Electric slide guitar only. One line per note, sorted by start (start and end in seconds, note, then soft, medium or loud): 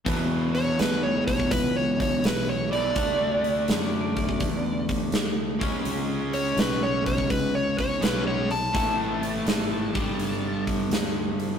0.55 0.78 C#5 medium
0.80 1.02 B4 medium
1.03 1.26 C#5 medium
1.27 1.50 C#5 medium
1.51 1.74 B4 medium
1.76 1.99 C#5 medium
2.02 2.24 C#5 medium
2.26 2.48 B4 medium
2.49 2.72 C#5 medium
2.73 4.85 D5 medium
6.34 6.57 C#5 medium
6.59 6.82 B4 medium
6.83 7.05 C#5 medium
7.07 7.30 C#5 medium
7.30 7.53 B4 medium
7.55 7.78 C#5 medium
7.80 8.02 C#5 medium
8.03 8.26 B4 medium
8.28 8.50 C#5 medium
8.51 10.63 A5 medium